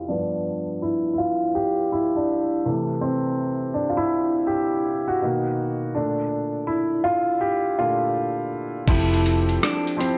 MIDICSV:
0, 0, Header, 1, 5, 480
1, 0, Start_track
1, 0, Key_signature, 0, "major"
1, 0, Tempo, 731707
1, 64, Time_signature, 4, 2, 24, 8
1, 6677, End_track
2, 0, Start_track
2, 0, Title_t, "Clean electric guitar"
2, 0, Program_c, 0, 27
2, 5838, Note_on_c, 0, 64, 99
2, 6321, Note_off_c, 0, 64, 0
2, 6324, Note_on_c, 0, 62, 95
2, 6557, Note_on_c, 0, 60, 69
2, 6561, Note_off_c, 0, 62, 0
2, 6677, Note_off_c, 0, 60, 0
2, 6677, End_track
3, 0, Start_track
3, 0, Title_t, "Upright piano"
3, 0, Program_c, 1, 0
3, 0, Control_c, 1, 64, 127
3, 0, Note_on_c, 1, 41, 51
3, 0, Note_on_c, 1, 52, 47
3, 0, Note_on_c, 1, 57, 55
3, 0, Note_on_c, 1, 64, 85
3, 0, Note_on_c, 1, 65, 79
3, 0, Note_on_c, 1, 67, 89
3, 55, Note_on_c, 1, 62, 73
3, 60, Note_on_c, 1, 43, 43
3, 65, Note_on_c, 1, 53, 40
3, 70, Note_on_c, 1, 59, 43
3, 74, Note_off_c, 1, 57, 0
3, 74, Note_off_c, 1, 67, 0
3, 74, Control_c, 1, 64, 0
3, 77, Note_off_c, 1, 41, 0
3, 77, Note_off_c, 1, 64, 0
3, 79, Note_off_c, 1, 52, 0
3, 80, Note_off_c, 1, 65, 0
3, 175, Control_c, 1, 64, 127
3, 409, Note_off_c, 1, 43, 0
3, 411, Note_off_c, 1, 53, 0
3, 414, Note_off_c, 1, 59, 0
3, 539, Note_on_c, 1, 64, 70
3, 554, Note_off_c, 1, 62, 0
3, 734, Note_off_c, 1, 64, 0
3, 744, Note_on_c, 1, 64, 64
3, 774, Note_on_c, 1, 65, 82
3, 780, Note_off_c, 1, 64, 0
3, 1002, Note_off_c, 1, 65, 0
3, 1016, Note_on_c, 1, 67, 84
3, 1260, Note_on_c, 1, 64, 84
3, 1268, Note_off_c, 1, 67, 0
3, 1416, Note_on_c, 1, 62, 70
3, 1423, Note_off_c, 1, 64, 0
3, 1720, Note_off_c, 1, 62, 0
3, 1741, Note_on_c, 1, 48, 48
3, 1744, Note_on_c, 1, 52, 50
3, 1750, Note_on_c, 1, 57, 53
3, 1753, Control_c, 1, 64, 0
3, 1871, Control_c, 1, 64, 127
3, 1976, Note_on_c, 1, 60, 65
3, 2434, Note_off_c, 1, 60, 0
3, 2437, Note_off_c, 1, 48, 0
3, 2438, Note_off_c, 1, 52, 0
3, 2441, Note_off_c, 1, 57, 0
3, 2453, Note_on_c, 1, 62, 76
3, 2485, Note_off_c, 1, 62, 0
3, 2555, Note_on_c, 1, 65, 61
3, 2605, Note_on_c, 1, 64, 108
3, 2618, Note_off_c, 1, 65, 0
3, 2914, Note_off_c, 1, 64, 0
3, 2933, Note_on_c, 1, 67, 82
3, 3331, Note_on_c, 1, 66, 86
3, 3347, Note_off_c, 1, 67, 0
3, 3426, Note_on_c, 1, 47, 55
3, 3430, Note_on_c, 1, 51, 49
3, 3433, Control_c, 1, 64, 0
3, 3434, Note_on_c, 1, 58, 62
3, 3549, Control_c, 1, 64, 127
3, 3637, Note_off_c, 1, 66, 0
3, 3881, Note_off_c, 1, 47, 0
3, 3883, Note_off_c, 1, 51, 0
3, 3885, Note_off_c, 1, 58, 0
3, 3902, Note_on_c, 1, 62, 70
3, 3908, Note_on_c, 1, 46, 41
3, 3912, Note_on_c, 1, 50, 40
3, 3914, Control_c, 1, 64, 0
3, 3915, Note_on_c, 1, 57, 51
3, 4040, Control_c, 1, 64, 127
3, 4357, Note_off_c, 1, 62, 0
3, 4376, Note_on_c, 1, 64, 75
3, 4603, Note_off_c, 1, 64, 0
3, 4618, Note_on_c, 1, 65, 96
3, 4672, Note_off_c, 1, 65, 0
3, 4860, Note_on_c, 1, 67, 76
3, 5101, Note_off_c, 1, 46, 0
3, 5104, Note_off_c, 1, 50, 0
3, 5107, Note_off_c, 1, 57, 0
3, 5108, Note_on_c, 1, 65, 84
3, 5109, Note_off_c, 1, 67, 0
3, 5111, Note_on_c, 1, 46, 45
3, 5113, Note_on_c, 1, 50, 41
3, 5117, Note_on_c, 1, 57, 47
3, 5324, Note_off_c, 1, 46, 0
3, 5325, Note_off_c, 1, 50, 0
3, 5328, Note_off_c, 1, 57, 0
3, 5560, Note_off_c, 1, 65, 0
3, 5823, Note_on_c, 1, 53, 90
3, 5825, Note_on_c, 1, 60, 73
3, 5833, Note_on_c, 1, 64, 77
3, 5834, Control_c, 1, 64, 0
3, 5837, Note_on_c, 1, 67, 75
3, 5845, Note_on_c, 1, 69, 93
3, 5933, Control_c, 1, 64, 127
3, 6353, Note_off_c, 1, 53, 0
3, 6354, Note_off_c, 1, 60, 0
3, 6358, Note_off_c, 1, 64, 0
3, 6360, Note_off_c, 1, 67, 0
3, 6364, Note_off_c, 1, 69, 0
3, 6539, Note_on_c, 1, 53, 78
3, 6545, Note_on_c, 1, 60, 71
3, 6549, Note_on_c, 1, 64, 73
3, 6556, Note_on_c, 1, 67, 69
3, 6561, Note_on_c, 1, 72, 76
3, 6677, Note_off_c, 1, 53, 0
3, 6677, Note_off_c, 1, 60, 0
3, 6677, Note_off_c, 1, 64, 0
3, 6677, Note_off_c, 1, 67, 0
3, 6677, Note_off_c, 1, 72, 0
3, 6677, End_track
4, 0, Start_track
4, 0, Title_t, "Fingered electric bass"
4, 0, Program_c, 2, 33
4, 5826, Note_on_c, 2, 29, 108
4, 6279, Note_off_c, 2, 29, 0
4, 6677, End_track
5, 0, Start_track
5, 0, Title_t, "Drums"
5, 5823, Note_on_c, 9, 36, 110
5, 5824, Note_on_c, 9, 49, 104
5, 5826, Note_on_c, 9, 42, 100
5, 5889, Note_off_c, 9, 36, 0
5, 5889, Note_off_c, 9, 49, 0
5, 5891, Note_off_c, 9, 42, 0
5, 5994, Note_on_c, 9, 42, 50
5, 6059, Note_off_c, 9, 42, 0
5, 6074, Note_on_c, 9, 42, 65
5, 6140, Note_off_c, 9, 42, 0
5, 6224, Note_on_c, 9, 42, 42
5, 6290, Note_off_c, 9, 42, 0
5, 6318, Note_on_c, 9, 37, 97
5, 6320, Note_on_c, 9, 42, 84
5, 6384, Note_off_c, 9, 37, 0
5, 6385, Note_off_c, 9, 42, 0
5, 6477, Note_on_c, 9, 42, 44
5, 6542, Note_off_c, 9, 42, 0
5, 6563, Note_on_c, 9, 42, 66
5, 6629, Note_off_c, 9, 42, 0
5, 6677, End_track
0, 0, End_of_file